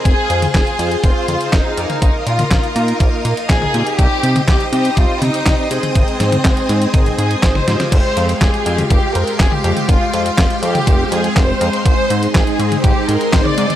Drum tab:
CC |----------------|----------------|----------------|----------------|
HH |x-xxxxxxx-xxx-xx|x-xxxxxxx-xxx-xx|x-xxxxxxx-xxx-xx|xxxxxxxxxxxxx-xx|
CP |----x-------x---|----x-------x---|----x-------x---|----x-------x---|
SD |----o-------o---|----o-------o---|----o-------o---|--o-o-------oooo|
T1 |---o------o----o|---o---------o--|---o------o----o|---o----o----o-o|
BD |o---o---o---o---|o---o---o---o---|o---o---o---o---|o---o---o---o---|

CC |x---------------|----------------|----------------|
HH |x-xxxxxxx-xxx-xx|x-xxxxxxx-xxx-xx|x-xxxxxxx-xxx-xx|
CP |----x-------x---|----x-------x---|----x-------x---|
SD |----o-------o---|----o-------o---|----o-------o---|
T1 |-------o-----o-o|-------o--------|-------o-----o-o|
BD |o---o---o---o---|o---o---o---o---|o---o---o---o---|